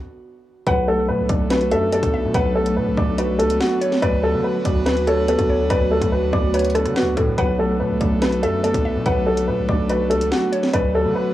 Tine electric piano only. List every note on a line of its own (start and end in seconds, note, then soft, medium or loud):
0.67 1.72 F#3 loud
0.88 1.92 A3 medium
1.29 1.70 D4 medium
1.51 2.55 F#4 loud
1.72 2.76 D4 medium
1.92 2.97 B3 medium
2.34 3.39 F#3 loud
2.55 3.60 A3 medium
2.97 3.38 D4 medium
3.18 4.02 F#4 loud
3.39 4.02 D4 medium
3.60 4.02 B3 medium
4.02 5.07 F#3 loud
4.23 5.28 A3 medium
4.65 5.06 D4 medium
4.86 5.91 F#4 loud
5.07 6.12 D4 medium
5.28 6.33 B3 medium
5.70 6.75 F#3 loud
5.91 6.96 A3 medium
6.33 6.74 D4 medium
6.54 7.38 F#4 loud
6.75 7.38 D4 medium
6.96 7.38 B3 medium
7.38 8.43 F#3 loud
7.59 8.64 A3 medium
8.01 8.42 D4 medium
8.22 9.27 F#4 loud
8.43 9.48 D4 medium
8.64 9.69 B3 medium
9.06 10.11 F#3 medium
9.27 10.32 A3 medium
9.69 10.09 D4 medium
9.90 10.74 F#4 loud
10.11 10.74 D4 medium
10.32 10.74 B3 medium
10.74 11.34 F#3 loud
10.94 11.34 A3 medium